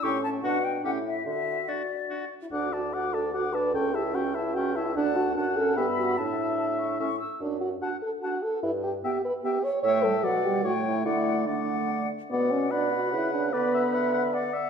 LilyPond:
<<
  \new Staff \with { instrumentName = "Flute" } { \time 3/4 \key d \major \tempo 4 = 148 cis'''8 a''8 fis''8 g''8 fis''8 e''8 | e''4 d''4. r8 | d'''8 a''8 d'''8 a''8 d'''8 a''8 | cis'''8 a''8 cis'''8 a''8 cis'''8 a''8 |
a''4 a''4 b''4 | a''4 a''8 cis'''8 cis'''8 e'''8 | r4 a''4 a''4 | r4 g''4 g''4 |
g''4 fis''4 g''4 | fis''4 fis''4. r8 | \key b \minor fis''4 b''2 | b''2 fis''4 | }
  \new Staff \with { instrumentName = "Oboe" } { \time 3/4 \key d \major g'4 fis'4 g'4 | r4 fis'4 fis'4 | fis''8 d''8 fis''8 d''8 fis''8 d''8 | g''8 e''8 g''8 e''8 g''8 e''8 |
fis''4 fis''4 e''4 | e''2 e''8 r8 | r4 fis''4 fis''4 | r4 e''4 e''4 |
e''4 d''4 cis''4 | d''4 d''4. r8 | \key b \minor d''4 fis''2 | d''8 e''8 fis''8 fis''8 d''8 e''8 | }
  \new Staff \with { instrumentName = "French horn" } { \time 3/4 \key d \major cis'4 d'4 e'4 | fis'2~ fis'8 r16 e'16 | d'8 fis'8 fis'8 a'8 fis'8 b'8 | a'8 g'8 fis'8 e'8 fis'8 e'16 e'16 |
d'8 fis'8 fis'8 a'8 g'8 fis'8 | e'2~ e'8 r8 | d'8 fis'8 fis'8 a'8 fis'8 a'8 | e'8 g'8 g'8 b'8 g'8 cis''8 |
cis''8 a'8 fis'8 g'8 fis'8 e'8 | e'4 d'4. r8 | \key b \minor b8 cis'8 d'8 fis'8 e'8 d'8 | b2~ b8 r8 | }
  \new Staff \with { instrumentName = "Clarinet" } { \time 3/4 \key d \major e'4 d'4 cis'4 | r4 d'4 d'4 | fis'8 d'8 fis'8 d'8 fis'8 d'8 | cis'8 e'8 cis'8 e'8 cis'8 e'8 |
d'4 d'8 cis'8 b4 | d'2 cis'8 r8 | r4 d'4 d'4 | r4 b4 b4 |
a8 g8 fis8 g8 a4 | a4 a4. r8 | \key b \minor r4 d''4 b'4 | b'4 e''4 d''4 | }
  \new Staff \with { instrumentName = "Bassoon" } { \clef bass \time 3/4 \key d \major a,4 b,4 a,4 | d4 r2 | d,2. | cis,2. |
d,4 fis,4 g,4 | a,2 a,8 r8 | fis,4 r2 | g,4 r2 |
a,4 b,4 a,4 | d2~ d8 r8 | \key b \minor b,2 cis4 | d2. | }
>>